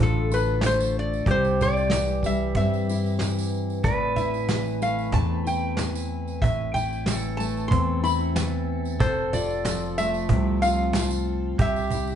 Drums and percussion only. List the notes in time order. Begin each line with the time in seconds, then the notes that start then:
0.31 cajon slap, tambourine
0.48 cajon slap
0.61 snare, cajon slap, tambourine
0.81 tambourine
1.14 tambourine
1.26 kick, cajon bass, cajon slap
1.45 tambourine
1.61 cajon bass, tambourine
1.77 tambourine
1.90 snare, cajon slap, tambourine
2.09 tambourine
2.23 kick, cajon slap, tambourine
2.55 cajon bass, kick, cajon slap, tambourine
2.74 tambourine
2.89 tambourine
3.06 tambourine
3.19 snare, cajon slap, tambourine
3.39 tambourine
3.54 tambourine
3.70 tambourine
3.84 cajon bass, kick, tambourine
4.16 cajon bass, tambourine
4.34 tambourine
4.49 cajon slap, snare, tambourine
4.66 tambourine
4.82 tambourine
4.99 tambourine
5.12 cajon bass, kick
5.45 cajon slap, tambourine
5.77 snare, cajon slap, tambourine
5.95 tambourine
6.28 tambourine
6.42 kick, cajon bass, tambourine
6.75 cajon bass, tambourine
6.93 tambourine
7.06 snare, cajon slap, tambourine
7.24 tambourine
7.40 tambourine
7.57 tambourine
7.71 kick, cajon bass
8.05 tambourine
8.36 snare, cajon slap, tambourine
8.85 tambourine
9.00 cajon bass, kick, tambourine
9.33 cajon bass, tambourine
9.50 tambourine
9.65 snare, cajon slap, tambourine
9.82 tambourine
9.98 tambourine
10.14 tambourine
10.29 cajon bass, kick
10.61 cajon slap, tambourine
10.93 cajon slap, snare, tambourine
11.11 tambourine
11.59 kick, cajon bass, tambourine
11.76 tambourine
11.90 cajon bass, tambourine
12.07 tambourine